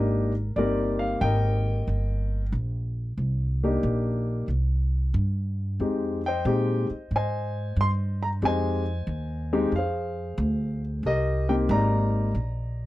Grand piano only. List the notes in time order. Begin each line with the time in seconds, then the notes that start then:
Already playing: A#3 D4 D#4 G4 A#4 D#5
0.56 A#3 C4 D#4 G4 A#4 D5
0.99 F5
1.21 A#4 D#5 G5
3.63 A#3 D4 D#4 G4
5.80 G#3 C4 D#4 G4
6.26 C5 D#5 G5
6.46 G#3 C4 D#4 G4
7.16 C5 D#5 G#5
7.81 C6
8.23 A#5
8.43 G#3 C4 D#4 G4 G#5
8.47 C5 D#5
9.53 G#3 C4 D#4 G4
9.76 G#4 C5 F5
11.06 G4 A#4 D#5
11.49 A#3 C4 D#4 G4 G5
11.71 D5 D#5 A#5